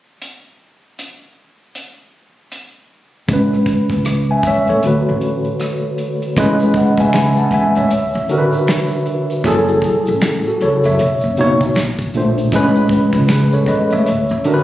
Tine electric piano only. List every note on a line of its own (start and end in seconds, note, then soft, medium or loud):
3.28 4.79 A2 medium
3.28 4.80 G#3 soft
3.28 4.81 C#4 medium
3.33 4.06 B4 medium
4.31 4.45 E5 soft
4.31 4.44 G#5 soft
4.47 4.68 C#5 medium
4.47 4.68 E5 medium
4.69 5.05 A4 soft
4.69 5.05 C#5 medium
4.82 6.33 D3 medium
4.82 6.34 A3 medium
4.82 6.35 F#4 medium
4.87 6.36 B4 medium
6.37 7.78 A2 medium
6.37 7.78 G#3 medium
6.37 7.79 C#4 medium
6.37 7.79 B4 medium
6.77 6.98 D#5 soft
6.77 6.98 F#5 medium
7.00 7.14 E5 medium
7.00 7.14 G#5 medium
7.14 7.36 G#5 medium
7.14 7.36 B5 medium
7.38 7.52 F#5 medium
7.38 7.52 A5 medium
7.54 7.75 E5 medium
7.54 7.75 G#5 medium
7.77 8.13 C#5 medium
7.77 8.12 E5 medium
8.29 9.35 D3 medium
8.29 9.35 D4 medium
8.29 9.36 F#4 medium
8.29 8.38 A#4 medium
8.38 9.39 B4 medium
9.45 10.86 F#3 medium
9.45 10.86 E4 medium
9.45 10.22 G#4 medium
9.45 10.23 A4 loud
10.47 10.60 F#4 soft
10.47 10.60 A4 soft
10.62 10.83 A4 medium
10.62 10.83 C#5 medium
10.86 11.21 C#5 soft
10.86 11.21 E5 medium
11.38 11.76 B2 medium
11.38 11.76 A#3 medium
11.38 11.76 D#4 medium
11.38 11.77 C#5 loud
12.15 12.49 A#2 medium
12.15 12.50 A3 medium
12.15 12.50 D4 medium
12.15 12.51 C5 medium
12.53 13.93 A2 medium
12.53 13.94 G#3 medium
12.53 13.95 C#4 medium
12.53 13.30 B4 loud
13.32 13.52 G#4 soft
13.32 13.52 B4 medium
13.53 13.68 A4 medium
13.53 13.67 C#5 medium
13.68 13.90 B4 medium
13.68 13.90 D#5 medium
13.92 14.28 C#5 medium
13.92 14.28 E5 medium
14.45 14.63 D3 medium
14.45 14.63 D4 medium
14.45 14.63 F#4 medium
14.45 14.54 A#4 medium
14.54 14.63 B4 medium